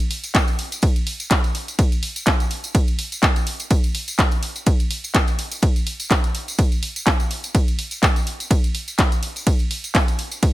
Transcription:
0.00 closed hi-hat
0.11 open hi-hat
0.24 closed hi-hat, tambourine
0.35 kick, clap, closed hi-hat, ride, tambourine
0.48 closed hi-hat, tambourine
0.59 open hi-hat
0.72 closed hi-hat, tambourine
0.82 kick, closed hi-hat, ride, tambourine
0.96 closed hi-hat, tambourine
1.07 open hi-hat
1.20 closed hi-hat, tambourine
1.30 kick, clap, closed hi-hat, ride, tambourine
1.44 closed hi-hat, tambourine
1.55 open hi-hat
1.68 closed hi-hat, tambourine
1.79 kick, closed hi-hat, ride, tambourine
1.92 closed hi-hat, tambourine
2.03 open hi-hat
2.16 closed hi-hat, tambourine
2.26 kick, clap, closed hi-hat, ride, tambourine
2.40 closed hi-hat, tambourine
2.51 open hi-hat
2.64 closed hi-hat, tambourine
2.75 kick, closed hi-hat, ride, tambourine
2.88 closed hi-hat, tambourine
2.99 open hi-hat
3.12 closed hi-hat, tambourine
3.23 kick, clap, closed hi-hat, ride
3.36 closed hi-hat, tambourine
3.47 open hi-hat
3.60 closed hi-hat, tambourine
3.70 kick, closed hi-hat, ride, tambourine
3.84 closed hi-hat, tambourine
3.95 open hi-hat
4.08 closed hi-hat, tambourine
4.18 kick, clap, closed hi-hat, ride, tambourine
4.31 closed hi-hat, tambourine
4.43 open hi-hat
4.56 closed hi-hat, tambourine
4.66 kick, closed hi-hat, ride, tambourine
4.80 closed hi-hat, tambourine
4.91 open hi-hat
5.04 closed hi-hat, tambourine
5.15 kick, clap, closed hi-hat, ride, tambourine
5.27 closed hi-hat, tambourine
5.39 open hi-hat
5.51 closed hi-hat, tambourine
5.62 kick, closed hi-hat, ride, tambourine
5.76 closed hi-hat, tambourine
5.87 open hi-hat
6.00 closed hi-hat, tambourine
6.11 kick, clap, closed hi-hat, ride
6.24 closed hi-hat, tambourine
6.35 open hi-hat
6.48 closed hi-hat, tambourine
6.58 kick, closed hi-hat, ride, tambourine
6.72 closed hi-hat, tambourine
6.83 open hi-hat
6.96 closed hi-hat, tambourine
7.06 kick, clap, closed hi-hat, ride, tambourine
7.20 closed hi-hat, tambourine
7.31 open hi-hat
7.44 closed hi-hat, tambourine
7.55 kick, closed hi-hat, ride, tambourine
7.68 closed hi-hat, tambourine
7.79 open hi-hat
7.91 closed hi-hat, tambourine
8.03 kick, clap, closed hi-hat, ride, tambourine
8.16 closed hi-hat, tambourine
8.27 open hi-hat
8.40 closed hi-hat, tambourine
8.50 kick, closed hi-hat, ride, tambourine
8.64 closed hi-hat, tambourine
8.75 open hi-hat
8.88 closed hi-hat, tambourine
8.98 kick, clap, closed hi-hat, ride, tambourine
9.12 closed hi-hat, tambourine
9.23 open hi-hat
9.36 closed hi-hat, tambourine
9.47 kick, closed hi-hat, ride, tambourine
9.59 closed hi-hat, tambourine
9.71 open hi-hat
9.84 closed hi-hat, tambourine
9.95 kick, clap, closed hi-hat, ride, tambourine
10.08 closed hi-hat, tambourine
10.19 open hi-hat
10.31 closed hi-hat, tambourine
10.42 kick, closed hi-hat, ride, tambourine

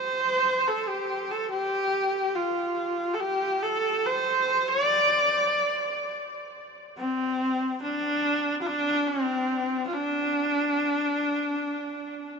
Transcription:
Already playing: C5
0.68 A4
0.88 G4
1.31 A4
1.51 G4
2.35 F4
3.14 A4
3.20 G4
3.62 A4
4.06 C5
4.68 D5
6.98 C4
7.82 D4
8.62 F4
8.66 D4
9.07 C4
9.87 F4
9.93 D4

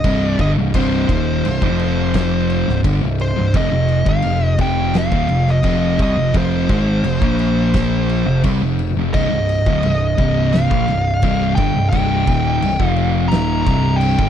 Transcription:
Already playing: D#5
0.04 C1 C2 G2 C3, kick, crash
0.28 D5
0.39 G1 G2 D3 D#5, kick, crash
0.58 C1 C2 G2
0.74 C1 C2 G2 C3 C5, kick, crash
1.08 D#1 D#2 A#2 D#3, kick, crash
1.45 C1 C2 G2, crash
1.62 F1 F2 C3 F3, kick
1.79 crash
2.14 kick, snare, crash
2.50 crash
2.67 C1 C2 G2, snare
2.84 G1 G2 D3, kick, crash
3.02 C1 C2 G2
3.19 C5, crash
3.36 C1 C2 G2
3.54 F1 F2 C3 D#5, kick, crash
3.71 F1 F2 C3
3.89 crash
4.05 G1 G2 D3 F5, kick
4.22 F1 F2 C3, crash
4.58 F1 F2 C3 F3 G5, kick, crash
4.94 snare, crash
4.98 F5
5.09 D#1 D#2 A#2, kick
5.28 F1 F2 C3, crash
5.47 D#5, snare
5.62 F1 F2 C3 F3, kick, crash
5.98 C2 C3 G3, kick, crash
6.02 D#5
6.14 F1 F2 C3
6.33 F1 F2 C3 F3 C5, kick, crash
6.69 G#1 G#2 D#3 G#3, kick, crash
7.03 F1 F2 C3, crash
7.21 A#1 A#2 F3 A#3, kick
7.39 crash
7.74 kick, snare, crash
8.09 crash
8.26 F1 F2 C3
8.44 C2 C3 G3, kick, crash
8.60 F1 F2 C3
8.79 crash
8.95 F1 F2 C3
9.13 C1 C2 G2 D#5, kick, crash
9.30 C1 C2 G2
9.49 crash
9.66 D1 D2 A2, kick
9.83 C1 C2 G2, crash
10.17 C1 C2 G2 C3, kick, crash
10.53 F5, snare, crash
10.70 A#1 A#2 F3, kick
10.87 C1 C2 G2, crash
11.22 C1 C2 G2 C3, kick, crash
11.55 G1 G2 D3 G5, kick, crash
11.74 C1 C2 G2
11.90 C1 C2 G2 G5, kick, crash
11.94 C3
12.27 D#1 D#2 A#2 D#3, kick, crash
12.61 C1 C2 G2, crash
12.79 F1 F2 C3 F3, kick
12.88 F5
12.96 crash
13.28 D#1 D#2 A#5, crash
13.33 A#2 D#3, snare
13.62 A#5
13.66 C1 C2 G2 C3, kick, crash
13.96 G5
14.01 crash
14.19 G1 G2 D3, kick

